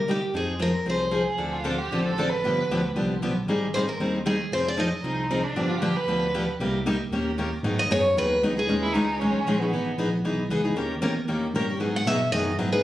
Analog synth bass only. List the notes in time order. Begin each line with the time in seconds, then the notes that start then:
Already playing: G1
0.34 F2
0.86 C2
1.38 D2
1.91 A1
2.43 G1
2.69 D2
2.95 C2
3.21 B1
3.46 G#1
3.99 D#2
4.51 F1
5.03 C2
5.55 G1
6.07 D2
6.59 C2
7.11 D#2
7.63 G#2
7.89 F#2
8.15 D#2
8.40 C#2
8.67 D#2
8.94 C#2
9.20 B1
9.34 B1
9.45 A#1
9.72 G#1
9.97 A#1
10.24 B1
10.49 C#2
10.74 D#2
11.01 E2
11.27 D#2
11.53 G2
11.80 G#2
12.06 B2
12.31 F#2
12.58 G#2